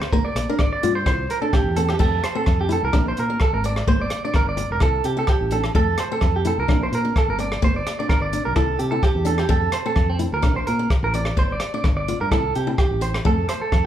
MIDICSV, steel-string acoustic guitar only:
0, 0, Header, 1, 3, 480
1, 0, Start_track
1, 0, Key_signature, -1, "major"
1, 0, Tempo, 468750
1, 128, Time_signature, 4, 2, 24, 8
1, 14194, End_track
2, 0, Start_track
2, 0, Title_t, "Steel-string acoustic guitar"
2, 0, Program_c, 0, 25
2, 135, Note_on_c, 0, 58, 90
2, 269, Note_off_c, 0, 58, 0
2, 507, Note_on_c, 0, 62, 69
2, 640, Note_off_c, 0, 62, 0
2, 854, Note_on_c, 0, 65, 76
2, 988, Note_off_c, 0, 65, 0
2, 1086, Note_on_c, 0, 64, 80
2, 1223, Note_off_c, 0, 64, 0
2, 1451, Note_on_c, 0, 62, 62
2, 1589, Note_off_c, 0, 62, 0
2, 1812, Note_on_c, 0, 60, 64
2, 1947, Note_off_c, 0, 60, 0
2, 2039, Note_on_c, 0, 57, 78
2, 2177, Note_off_c, 0, 57, 0
2, 2409, Note_on_c, 0, 60, 64
2, 2547, Note_off_c, 0, 60, 0
2, 2753, Note_on_c, 0, 64, 71
2, 2893, Note_off_c, 0, 64, 0
2, 3001, Note_on_c, 0, 62, 71
2, 3139, Note_off_c, 0, 62, 0
2, 3377, Note_on_c, 0, 62, 61
2, 3513, Note_off_c, 0, 62, 0
2, 3738, Note_on_c, 0, 60, 68
2, 3871, Note_off_c, 0, 60, 0
2, 3969, Note_on_c, 0, 58, 85
2, 4105, Note_off_c, 0, 58, 0
2, 4351, Note_on_c, 0, 62, 65
2, 4482, Note_off_c, 0, 62, 0
2, 4934, Note_on_c, 0, 64, 76
2, 5068, Note_off_c, 0, 64, 0
2, 5291, Note_on_c, 0, 64, 62
2, 5428, Note_off_c, 0, 64, 0
2, 5650, Note_on_c, 0, 62, 69
2, 5785, Note_off_c, 0, 62, 0
2, 5888, Note_on_c, 0, 57, 85
2, 6024, Note_off_c, 0, 57, 0
2, 6263, Note_on_c, 0, 60, 64
2, 6397, Note_off_c, 0, 60, 0
2, 6606, Note_on_c, 0, 64, 74
2, 6742, Note_off_c, 0, 64, 0
2, 6843, Note_on_c, 0, 62, 73
2, 6980, Note_off_c, 0, 62, 0
2, 7216, Note_on_c, 0, 62, 62
2, 7351, Note_off_c, 0, 62, 0
2, 7563, Note_on_c, 0, 60, 67
2, 7700, Note_off_c, 0, 60, 0
2, 7805, Note_on_c, 0, 58, 87
2, 7941, Note_off_c, 0, 58, 0
2, 8190, Note_on_c, 0, 62, 64
2, 8321, Note_off_c, 0, 62, 0
2, 8530, Note_on_c, 0, 62, 70
2, 8665, Note_off_c, 0, 62, 0
2, 8768, Note_on_c, 0, 64, 71
2, 8903, Note_off_c, 0, 64, 0
2, 9130, Note_on_c, 0, 64, 62
2, 9267, Note_off_c, 0, 64, 0
2, 9471, Note_on_c, 0, 62, 69
2, 9611, Note_off_c, 0, 62, 0
2, 10093, Note_on_c, 0, 60, 65
2, 10229, Note_off_c, 0, 60, 0
2, 10437, Note_on_c, 0, 64, 70
2, 10575, Note_off_c, 0, 64, 0
2, 10674, Note_on_c, 0, 62, 80
2, 10813, Note_off_c, 0, 62, 0
2, 11052, Note_on_c, 0, 62, 64
2, 11188, Note_off_c, 0, 62, 0
2, 11411, Note_on_c, 0, 60, 68
2, 11546, Note_off_c, 0, 60, 0
2, 11643, Note_on_c, 0, 58, 82
2, 11780, Note_off_c, 0, 58, 0
2, 12020, Note_on_c, 0, 62, 66
2, 12154, Note_off_c, 0, 62, 0
2, 12373, Note_on_c, 0, 65, 73
2, 12507, Note_off_c, 0, 65, 0
2, 12615, Note_on_c, 0, 64, 71
2, 12748, Note_off_c, 0, 64, 0
2, 12974, Note_on_c, 0, 64, 64
2, 13110, Note_off_c, 0, 64, 0
2, 13324, Note_on_c, 0, 62, 69
2, 13460, Note_off_c, 0, 62, 0
2, 13567, Note_on_c, 0, 57, 87
2, 13703, Note_off_c, 0, 57, 0
2, 14194, End_track
3, 0, Start_track
3, 0, Title_t, "Muted steel-string acoustic guitar strokes"
3, 4680, Note_on_c, 9, 29, 64
3, 4783, Note_off_c, 9, 29, 0
3, 9716, Note_on_c, 9, 29, 84
3, 9818, Note_off_c, 9, 29, 0
3, 14194, End_track
0, 0, End_of_file